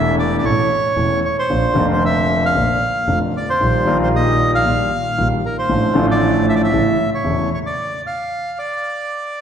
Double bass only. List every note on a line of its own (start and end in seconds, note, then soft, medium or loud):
0.00 0.41 E1 medium
0.45 0.67 A1 medium
0.97 1.20 E1 soft
1.51 1.73 A#1 medium
1.77 2.52 F1 medium
2.56 2.78 A#1 medium
3.09 3.31 F1 medium
3.61 3.83 A#1 medium
3.87 4.62 A#1 medium
4.66 4.88 A#1 medium
5.18 5.40 A#1 medium
5.70 5.91 A1 medium
5.96 6.69 A1 medium
6.74 6.95 A1 medium
7.25 7.47 E1 medium